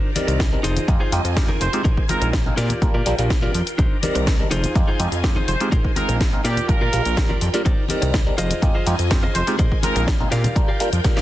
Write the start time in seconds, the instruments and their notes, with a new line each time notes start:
Already playing: string machine D#3 D5 A#5
0.15 clav D#3 G3 C4 A#4 D5, open hi-hat, high conga, shaker
0.28 analog synth bass C2, muted clean electric guitar stroke, closed hi-hat, shaker
0.39 muted clean electric guitar stroke, kick, snare, closed hi-hat, shaker
0.52 clav G3 C4 D4 D#4 A#4
0.63 analog synth bass F1, clean electric guitar D#4 F4 G#4 C5, string machine F4 D#5 G#5, open hi-hat, shaker
0.77 closed hi-hat, high conga, shaker
0.88 analog synth bass F2, clav G#3 C4 D#4 F4 G4, kick, closed hi-hat, shaker
1.00 analog synth bass F2, clean electric guitar D#4 F4 G#4 C5
1.12 analog synth bass F2, clav G#3 C4 D#4 F4 G4, open hi-hat, shaker
1.24 analog synth bass F2, muted clean electric guitar stroke, closed hi-hat, shaker
1.36 clav G#3 C4 D#4 F4 G4, kick, snare, closed hi-hat, shaker
1.48 clean electric guitar D#4 F4 G#4 A#4, high conga
1.61 analog synth bass F1, trumpet section C5, open hi-hat, shaker
1.73 clav G#3 C4 D#4 F4 G4, closed hi-hat, shaker
1.84 analog synth bass A#1, clean electric guitar D#4 G#4 A#4 C5, string machine D#4 C5, kick, closed hi-hat, shaker
1.97 kick
2.08 clav G#3 C4 D#4 F4 A#4, trumpet section A#4, open hi-hat, high conga, shaker
2.21 analog synth bass A#1, muted clean electric guitar stroke, closed hi-hat, shaker
2.33 muted clean electric guitar stroke, kick, snare, closed hi-hat, shaker
2.46 clav G#3 C4 D#4 F4 A#4, low conga
2.57 analog synth bass A#2, clean electric guitar F4 G4 A#4 D5, string machine F4 A#4 G5, snare, open hi-hat, shaker
2.69 closed hi-hat, high conga, shaker
2.82 analog synth bass A#1, clav G3 A#3 D4 F4 A#4, kick, closed hi-hat, shaker
2.94 analog synth bass A#2, clean electric guitar F4 G4 A#4 D5
3.06 analog synth bass A#1, clav G3 A#3 D4 F4 A#4, open hi-hat, shaker
3.18 analog synth bass A#1, clav G3 A#3 D4 F4 A#4, muted clean electric guitar stroke, closed hi-hat, shaker
3.30 kick, snare, closed hi-hat, low conga, shaker
3.42 clav G3 A#3 D4 F4 A#4, clean electric guitar F4 G4 A#4 D5, high conga
3.54 analog synth bass F2, open hi-hat, shaker
3.67 closed hi-hat, shaker
3.78 analog synth bass C2, string machine D#3 D5 A#5, clean electric guitar D4 D#4 A#4 C5, kick, closed hi-hat, shaker
4.03 clav D#3 G3 C4 A#4 D5, open hi-hat, high conga, shaker
4.15 analog synth bass C2, muted clean electric guitar stroke, closed hi-hat, shaker
4.26 muted clean electric guitar stroke, kick, snare, closed hi-hat, shaker
4.39 clav G3 C4 D4 D#4 A#4
4.51 analog synth bass F1, clean electric guitar D#4 F4 G#4 C5, string machine F4 D#5 G#5, open hi-hat, shaker
4.63 closed hi-hat, high conga, shaker
4.75 analog synth bass F2, clav G#3 C4 D#4 F4 G4, kick, closed hi-hat, shaker
4.87 analog synth bass F2, clean electric guitar D#4 F4 G#4 C5
4.99 analog synth bass F2, clav G#3 C4 D#4 F4 G4, open hi-hat, shaker
5.12 analog synth bass F2, muted clean electric guitar stroke, closed hi-hat, shaker
5.24 clav G#3 C4 D#4 F4 G4, kick, snare, closed hi-hat, shaker
5.36 clean electric guitar D#4 F4 G#4 C5, high conga
5.48 analog synth bass F1, trumpet section C5, open hi-hat, shaker
5.60 clav G#3 C4 D#4 F4 G4, closed hi-hat, shaker
5.72 analog synth bass A#1, clean electric guitar D#4 G#4 A#4 C5, string machine D#4 C5, kick, closed hi-hat, shaker
5.85 kick
5.96 clav G#3 C4 D#4 F4 A#4, trumpet section A#4, open hi-hat, high conga, shaker
6.09 analog synth bass A#1, muted clean electric guitar stroke, closed hi-hat, shaker
6.21 muted clean electric guitar stroke, kick, snare, closed hi-hat, shaker
6.33 clav G#3 C4 D#4 F4 A#4
6.44 analog synth bass A#2, string machine F4 A#4 G5, clean electric guitar F4 G4 A#4 D5, trumpet section G4, snare, open hi-hat, shaker
6.57 closed hi-hat, high conga, shaker
6.68 analog synth bass A#1, clav G3 A#3 D4 F4 A#4, trumpet section A#4, kick, closed hi-hat, shaker
6.81 analog synth bass A#2, clean electric guitar F4 G4 A#4 D5
6.93 analog synth bass A#1, clav G3 A#3 D4 F4 A#4, open hi-hat, shaker
7.05 analog synth bass A#1, muted clean electric guitar stroke, closed hi-hat, shaker
7.17 clav G3 A#3 D4 F4 A#4, kick, snare, closed hi-hat, shaker
7.29 clean electric guitar F4 G4 A#4 D5, high conga
7.41 analog synth bass F2, open hi-hat, shaker
7.54 clav G3 A#3 D4 F4 A#4, closed hi-hat, shaker
7.65 analog synth bass C2, string machine D#3 D5 A#5, clean electric guitar D#4 A#4 C5 D5, kick, closed hi-hat, shaker
7.88 clav G3 C4 D#4 A#4 D5, open hi-hat, high conga, shaker
8.02 analog synth bass C2, muted clean electric guitar stroke, closed hi-hat, shaker
8.13 muted clean electric guitar stroke, kick, snare, closed hi-hat, shaker
8.26 clav G3 C4 D4 D#4 A#4
8.38 analog synth bass F1, clean electric guitar F4 G#4 C5 D#5, string machine F4 D#5 G#5, open hi-hat, shaker
8.50 closed hi-hat, high conga, shaker
8.62 analog synth bass F2, clav G#3 C4 D#4 F4 G4, kick, closed hi-hat, shaker
8.74 analog synth bass F2, clean electric guitar F4 G#4 C5 D#5
8.86 analog synth bass F2, clav G#3 C4 D#4 F4 G4, open hi-hat, shaker
8.99 analog synth bass F2, muted clean electric guitar stroke, closed hi-hat, shaker
9.11 clav G#3 C4 D#4 F4 G4, kick, snare, closed hi-hat, shaker
9.23 clean electric guitar F4 G#4 C5 D#5, high conga
9.35 analog synth bass F1, trumpet section C5, open hi-hat, shaker
9.47 clav G#3 C4 D#4 F4 G4, closed hi-hat, shaker
9.59 analog synth bass A#1, string machine D#4 C5, clean electric guitar G#4 A#4 C5 D#5, kick, closed hi-hat, shaker
9.72 kick
9.83 clav G#3 C4 D#4 F4 A#4, trumpet section A#4, open hi-hat, high conga, shaker
9.95 analog synth bass A#1, muted clean electric guitar stroke, closed hi-hat, shaker
10.07 muted clean electric guitar stroke, kick, snare, closed hi-hat, shaker
10.20 clav G#3 C4 D#4 F4 A#4, low conga
10.31 analog synth bass A#2, string machine F4 A#4 G5, clean electric guitar G4 A#4 D5 F5, snare, open hi-hat, shaker
10.44 closed hi-hat, high conga, low conga, shaker
10.56 clav G3 A#3 D4 F4 A#4, kick, closed hi-hat, shaker
10.68 clean electric guitar G4 A#4 D5 F5
10.80 clav G3 A#3 D4 F4 A#4, open hi-hat, shaker
10.92 analog synth bass F2, muted clean electric guitar stroke, closed hi-hat, shaker
11.04 clav G3 A#3 D4 F4 A#4, kick, snare, closed hi-hat, low conga, shaker
11.16 clean electric guitar G4 A#4 D5 F5, snare, high conga